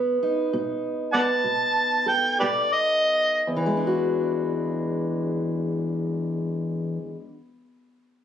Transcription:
0.00 0.46 B2 medium
0.00 1.11 B3 medium
0.23 3.42 D#4 medium
0.53 1.38 B2 medium
1.14 3.43 B3 medium
1.14 1.22 D5 medium
1.14 1.21 F#5 medium
1.14 2.06 A5 loud
1.44 2.34 B2 medium
2.06 3.42 A4 medium
2.06 2.39 G5 medium
2.40 3.39 B2 medium
2.40 2.46 G4 medium
2.40 2.47 B4 medium
2.40 2.72 D5 medium
2.72 3.42 D#5 loud
3.47 6.97 E2 medium
3.57 7.07 E3 medium
3.66 7.16 G#3 medium
3.77 7.27 D4 medium
3.87 7.37 F#4 medium

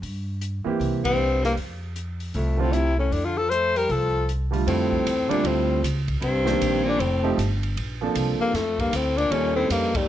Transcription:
0.02 0.62 G2 medium
0.02 open hi-hat soft
0.41 closed hi-hat medium
0.64 1.15 E3 medium
0.64 1.15 A#3 medium
0.64 1.16 C4 medium
0.64 1.16 G4 medium
0.64 muted upright bass stroke soft
0.80 1.53 C2 medium
0.80 open hi-hat soft
1.05 1.41 G2 medium
1.05 1.41 C4 medium
1.05 kick medium
1.05 ride medium
1.42 1.55 G2 medium
1.42 1.53 A#3 medium
1.42 snare soft
1.56 2.30 F2 medium
1.56 open hi-hat soft
1.96 closed hi-hat medium
2.20 open hi-hat soft
2.34 3.08 C2 medium
2.34 2.61 F2 medium
2.34 2.62 A3 medium
2.34 open hi-hat soft
2.58 2.75 A2 medium
2.58 2.71 D3 medium
2.58 2.72 A3 medium
2.58 2.72 C4 medium
2.58 2.74 C4 medium
2.58 2.72 F4 medium
2.73 2.97 C3 medium
2.73 2.98 E4 medium
2.73 closed hi-hat medium
2.97 3.12 A2 medium
2.97 3.14 C#4 medium
3.11 3.85 F2 medium
3.11 3.27 A2 medium
3.11 3.27 D4 medium
3.11 open hi-hat soft
3.25 3.40 D3 medium
3.25 3.39 F4 medium
3.37 3.53 F3 medium
3.37 3.51 A4 medium
3.50 3.78 A3 medium
3.50 3.79 C5 loud
3.50 closed hi-hat medium
3.76 3.92 G3 medium
3.76 3.94 A#4 medium
3.76 open hi-hat soft
3.89 4.63 C2 medium
3.89 4.29 F3 medium
3.89 4.29 A4 medium
3.89 open hi-hat soft
4.29 closed hi-hat soft
4.51 5.01 D3 medium
4.51 5.02 G3 medium
4.51 5.02 A3 medium
4.51 5.02 F4 medium
4.51 open hi-hat soft
4.67 5.04 F2 medium
4.67 5.31 A2 medium
4.67 5.32 C4 medium
4.67 ride medium
4.92 kick soft
5.05 5.28 E2 medium
5.05 hi-hat pedal soft
5.05 ride medium
5.28 5.44 A#2 medium
5.28 5.79 D3 medium
5.28 5.79 G3 medium
5.28 5.79 A3 medium
5.28 5.80 C4 medium
5.28 5.48 D4 medium
5.28 5.79 F4 medium
5.28 muted upright bass stroke soft
5.28 ride soft
5.42 5.81 D2 medium
5.42 5.82 A2 medium
5.42 ride medium
5.47 5.84 C4 medium
5.82 6.20 C#2 medium
5.82 hi-hat pedal medium
5.82 ride medium
6.08 kick medium
6.08 ride soft
6.21 6.59 C2 medium
6.21 6.86 G2 medium
6.21 6.90 C4 medium
6.21 ride medium
6.44 6.95 D#3 medium
6.44 6.95 A#3 medium
6.44 6.95 C4 medium
6.44 6.96 D4 medium
6.44 6.96 G4 medium
6.44 snare medium
6.60 6.97 A#1 medium
6.60 hi-hat pedal medium
6.60 ride medium
6.84 6.99 A#2 medium
6.89 7.02 D4 medium
6.98 7.36 F1 medium
6.98 7.37 A2 medium
6.98 7.38 C4 medium
6.98 ride medium
7.23 7.35 F3 medium
7.23 7.36 A3 medium
7.23 7.36 C4 medium
7.23 7.36 D#4 medium
7.23 7.36 G4 medium
7.38 7.75 G1 medium
7.38 hi-hat pedal medium
7.38 ride medium
7.63 ride soft
7.76 8.13 A#1 medium
7.76 ride medium
8.01 8.50 F3 medium
8.01 8.51 A#3 medium
8.01 8.51 C4 medium
8.01 8.51 D4 medium
8.01 8.51 A4 medium
8.15 8.38 C2 medium
8.15 hi-hat pedal medium
8.15 ride medium
8.40 8.55 G2 medium
8.40 8.57 A#3 medium
8.40 muted upright bass stroke soft
8.53 8.90 F2 medium
8.53 8.80 F2 medium
8.53 8.82 A3 medium
8.53 snare soft
8.53 ride medium
8.78 8.93 G2 medium
8.78 8.97 A#3 medium
8.78 kick medium
8.78 ride soft
8.92 9.29 D2 medium
8.92 9.19 A2 medium
8.92 9.19 C4 medium
8.92 hi-hat pedal soft
8.92 ride medium
9.18 9.31 A#2 medium
9.18 9.33 D4 medium
9.18 ride soft
9.30 9.68 D#2 medium
9.30 9.55 A#2 medium
9.30 9.89 G3 soft
9.30 9.89 A#3 soft
9.30 9.89 C#4 soft
9.30 9.55 C#4 medium
9.30 9.89 D#4 soft
9.30 9.90 A4 medium
9.30 ride medium
9.55 9.72 A2 medium
9.55 9.73 C4 medium
9.70 10.07 F2 medium
9.70 9.96 G2 medium
9.70 9.98 A#3 medium
9.70 hi-hat pedal soft
9.70 ride medium
9.94 10.08 D#2 medium
9.94 10.08 G3 medium
9.94 kick medium
9.94 ride medium

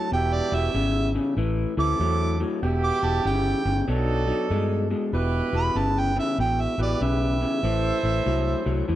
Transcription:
0.00 0.10 A5 loud
0.11 0.39 E1 medium
0.11 0.48 E2 medium
0.11 0.48 B2 medium
0.11 0.90 B3 medium
0.11 0.91 E4 medium
0.11 0.91 G4 medium
0.11 0.35 G5 medium
0.33 0.56 D5 loud
0.52 0.67 E1 medium
0.52 0.72 E2 medium
0.52 0.72 B2 medium
0.52 1.15 E5 loud
0.74 1.17 G#1 medium
0.74 1.10 E2 medium
0.74 1.11 C#3 medium
1.15 1.35 E2 medium
1.15 1.35 C#3 medium
1.37 1.64 A1 medium
1.37 1.73 A2 medium
1.37 1.73 E3 medium
1.76 1.93 D2 medium
1.76 1.98 A2 medium
1.76 1.98 E3 medium
1.76 2.49 C4 medium
1.76 2.49 E4 medium
1.76 2.49 A4 medium
1.76 2.40 D6 loud
2.00 2.42 E2 medium
2.00 2.36 A2 medium
2.00 2.36 F#3 medium
2.40 2.60 A2 medium
2.40 2.61 F#3 medium
2.62 2.90 E1 medium
2.62 2.99 E2 medium
2.62 2.99 B2 medium
2.62 3.69 B3 loud
2.62 3.70 E4 medium
2.62 3.70 G4 loud
2.84 3.07 D6 loud
3.02 3.18 E1 medium
3.02 3.23 E2 medium
3.02 3.23 B2 medium
3.02 3.25 A5 medium
3.25 3.52 G1 medium
3.25 3.61 E2 medium
3.25 3.61 C#3 medium
3.25 3.87 G5 medium
3.65 3.81 G1 medium
3.65 3.85 E2 medium
3.65 3.86 C#3 medium
3.87 4.30 B1 medium
3.87 4.24 B2 medium
3.87 4.24 F#3 medium
3.87 4.95 D4 medium
3.87 4.95 D#4 medium
3.87 4.95 A4 loud
4.27 4.48 B2 medium
4.27 4.48 F#3 medium
4.50 4.93 G2 medium
4.50 4.86 B2 medium
4.50 4.87 G#3 medium
4.91 5.11 B2 medium
4.91 5.11 G#3 medium
5.12 5.40 E1 medium
5.12 5.49 E2 medium
5.12 5.49 B2 medium
5.12 5.91 E4 medium
5.12 5.91 G4 medium
5.12 5.92 B4 loud
5.53 5.68 E1 medium
5.53 5.73 E2 medium
5.53 5.74 B2 medium
5.53 5.79 B5 medium
5.75 6.18 G1 medium
5.75 6.12 E2 medium
5.75 6.12 C#3 medium
5.75 6.00 A5 medium
5.99 6.18 G5 medium
6.16 6.36 E2 medium
6.16 6.36 C#3 medium
6.16 6.39 E5 medium
6.38 6.65 A1 medium
6.38 6.75 E2 medium
6.38 6.75 B2 medium
6.38 6.63 G5 medium
6.61 6.80 E5 medium
6.78 6.93 A1 medium
6.78 6.99 E2 medium
6.78 6.99 B2 medium
6.78 7.49 E4 medium
6.78 7.50 G4 medium
6.78 7.50 B4 medium
6.82 7.04 D5 medium
7.01 7.43 B1 medium
7.01 7.37 E2 medium
7.01 7.37 C#3 medium
7.01 8.85 E5 medium
7.41 7.61 E2 medium
7.41 7.62 C#3 medium
7.62 7.90 A1 medium
7.62 7.99 A2 medium
7.62 8.00 E3 medium
7.62 8.70 E4 medium
7.62 8.70 A4 medium
7.62 8.71 C5 medium
8.03 8.19 A1 medium
8.03 8.24 A2 medium
8.03 8.24 E3 medium
8.26 8.53 C2 medium
8.26 8.62 A2 medium
8.26 8.62 F#3 medium
8.66 8.81 C2 medium
8.66 8.86 A2 medium
8.66 8.86 F#3 medium
8.88 8.96 E2 medium
8.88 8.96 A2 medium
8.88 8.96 E3 medium

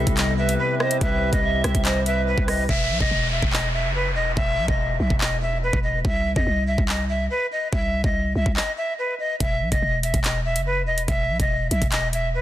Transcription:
0.00 2.66 C3 medium
0.00 2.74 C3 medium
0.00 2.66 G3 medium
0.00 2.74 G3 medium
0.00 2.65 B3 medium
0.00 2.65 E4 medium
0.00 2.66 E4 medium
0.00 0.35 A4 medium
0.00 2.66 B4 medium
0.00 0.12 E5 medium
0.07 0.57 C2 loud
0.07 kick medium
0.07 closed hi-hat medium
0.17 0.33 D#5 medium
0.17 clap loud
0.17 closed hi-hat medium
0.38 0.78 B4 medium
0.38 0.54 E5 medium
0.49 closed hi-hat medium
0.59 0.75 B4 medium
0.80 1.00 C5 medium
0.80 0.97 D#5 medium
0.80 cross-stick loud
0.91 closed hi-hat medium
1.01 1.31 C2 loud
1.01 1.41 B4 loud
1.01 1.31 E5 medium
1.01 kick loud
1.01 closed hi-hat medium
1.33 1.63 C2 loud
1.33 1.62 D#5 medium
1.33 kick medium
1.33 closed hi-hat medium
1.43 1.83 E5 medium
1.64 1.74 C2 loud
1.64 1.80 E5 medium
1.64 cross-stick loud
1.64 closed hi-hat medium
1.75 2.35 C2 loud
1.75 kick medium
1.75 closed hi-hat medium
1.84 2.05 C5 medium
1.84 2.01 D#5 medium
1.84 clap loud
1.84 closed hi-hat medium
2.06 2.65 B4 medium
2.06 2.22 E5 medium
2.06 closed hi-hat medium
2.27 2.43 B4 medium
2.38 2.68 C2 loud
2.38 kick loud
2.48 2.64 D#5 medium
2.48 cross-stick loud
2.48 open hi-hat medium
2.69 2.92 E1 loud
2.69 2.98 E5 loud
2.69 kick loud
2.69 downlifter medium
2.90 3.00 B1 loud
3.01 3.11 E1 loud
3.01 3.30 D#5 medium
3.01 kick medium
3.11 3.41 E1 loud
3.32 3.48 E5 medium
3.43 3.86 E1 loud
3.43 kick medium
3.53 3.69 D#5 medium
3.53 clap loud
3.74 3.90 E5 medium
3.84 4.12 F#1 loud
3.95 4.11 B4 medium
4.11 4.36 E1 loud
4.15 4.32 D#5 medium
4.36 4.59 E1 loud
4.36 4.66 E5 loud
4.36 kick loud
4.58 4.68 B1 loud
4.68 4.99 E1 loud
4.68 4.98 D#5 medium
4.68 kick medium
4.99 5.10 B1 loud
4.99 5.16 E5 medium
5.10 5.71 E1 loud
5.10 kick medium
5.21 5.37 D#5 medium
5.21 clap loud
5.42 5.58 E5 medium
5.63 5.79 B4 medium
5.73 6.04 E1 loud
5.73 kick loud
5.83 6.00 D#5 medium
6.05 6.35 C2 loud
6.05 6.34 E5 loud
6.05 kick loud
6.36 6.46 E2 loud
6.36 6.66 D#5 medium
6.36 kick medium
6.47 6.77 C2 loud
6.67 6.84 E5 medium
6.78 7.29 C2 loud
6.78 kick medium
6.89 7.05 D#5 medium
6.89 clap loud
7.09 7.26 E5 medium
7.31 7.47 B4 medium
7.52 7.68 D#5 medium
7.73 8.03 C2 loud
7.73 8.02 E5 medium
7.73 kick loud
8.04 8.34 C2 loud
8.04 8.34 D#5 medium
8.04 kick medium
8.36 8.46 C2 loud
8.36 8.52 E5 medium
8.46 8.56 C2 loud
8.46 kick medium
8.56 8.72 D#5 medium
8.56 clap loud
8.78 8.94 E5 medium
8.99 9.15 B4 medium
9.20 9.36 D#5 medium
9.40 9.63 E1 loud
9.40 9.70 E5 loud
9.40 kick loud
9.40 closed hi-hat medium
9.61 9.71 B1 loud
9.72 9.82 E1 loud
9.72 10.02 D#5 medium
9.72 kick medium
9.72 closed hi-hat medium
9.82 10.13 E1 loud
10.03 10.19 E5 medium
10.03 closed hi-hat medium
10.14 10.57 E1 loud
10.14 kick medium
10.14 closed hi-hat medium
10.24 10.40 D#5 medium
10.24 clap loud
10.24 closed hi-hat medium
10.45 10.61 E5 medium
10.56 10.83 F#1 loud
10.56 closed hi-hat medium
10.66 10.82 B4 medium
10.82 11.07 E1 loud
10.87 11.03 D#5 medium
10.98 closed hi-hat medium
11.08 11.31 E1 loud
11.08 11.38 E5 loud
11.08 kick loud
11.08 closed hi-hat medium
11.29 11.39 B1 loud
11.40 11.70 E1 loud
11.40 11.70 D#5 medium
11.40 kick medium
11.40 closed hi-hat medium
11.71 11.81 B1 loud
11.71 11.87 E5 medium
11.71 closed hi-hat medium
11.82 12.42 E1 loud
11.82 kick medium
11.82 closed hi-hat medium
11.92 12.08 D#5 medium
11.92 clap loud
11.92 closed hi-hat medium
12.13 12.30 E5 medium
12.13 closed hi-hat medium
12.35 12.42 B4 medium

